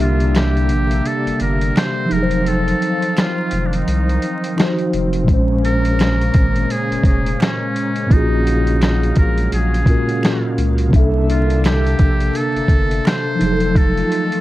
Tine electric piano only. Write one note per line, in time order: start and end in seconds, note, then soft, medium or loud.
0.00 2.04 C3 medium
0.00 2.06 A#3 medium
0.00 2.07 D4 medium
0.00 2.10 G4 medium
0.00 2.08 E5 medium
2.06 4.51 F3 medium
2.06 4.53 D#4 medium
2.13 4.55 F#3 medium
2.13 2.21 G#4 medium
2.23 4.60 C5 medium
4.56 5.27 F3 medium
4.56 5.28 D#4 medium
4.56 5.29 F#4 soft
4.61 5.30 C5 medium
5.23 8.04 A#2 medium
5.23 8.06 G#3 medium
5.30 8.08 C#4 medium
5.30 8.09 C5 medium
8.06 9.81 A#2 medium
8.06 9.82 A#3 medium
8.10 9.83 C#4 medium
8.10 9.84 F4 medium
8.14 9.85 F#4 medium
8.14 9.87 G#4 medium
9.85 10.92 A#2 medium
9.85 10.89 A#3 soft
9.85 10.93 C#4 soft
9.85 10.93 F4 soft
9.89 10.94 F#4 soft
9.89 10.94 A#4 medium
10.88 13.34 C3 medium
10.88 13.35 A#3 medium
10.93 13.36 D4 medium
10.93 13.38 E5 medium
10.99 13.39 A4 medium
13.35 14.41 F3 medium
13.35 14.41 D#4 medium
13.42 14.41 F#3 medium
13.42 13.51 G#4 medium
13.52 14.41 A4 medium